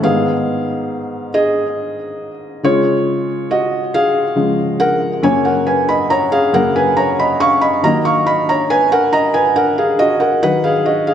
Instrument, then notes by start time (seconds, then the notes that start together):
felt piano
0.03 G#2 D#3 B3 G#4 F5
1.34 G#4 D#5
2.63 C#3 G#3 F4 C#5
3.51 F#4 D#5
3.94 G#4 F5
4.36 C#3 F3 G#3
4.80 A#4 F#5
5.22 F#2 C#3 A#3 C#5 G#5
5.45 A#4 F#5
5.67 B4 G#5
5.89 D#5 B5
6.10 C#5 A#5
6.32 G#4 F5
6.53 F#2 C#3 A#3 A#4 F#5
6.76 B4 G#5
6.97 C#5 A#5
7.19 D#5 B5
7.40 F5 C#6
7.61 D#5 B5
7.83 D#3 F#3 A#3 D#5 A#5
8.05 F5 C#6
8.27 D#5 B5
8.49 C#5 A#5
8.70 B4 G#5
8.92 A#4 F#5
9.13 D#5 A#5
9.34 B4 G#5
9.56 A#4 F#5
9.78 G#4 F5
9.99 F#4 D#5
10.20 A#4 F#5
10.42 D#3 F#3 D#4 B4 F#5
10.64 G#4 F5
10.86 F#4 D#5
11.07 G#4 F5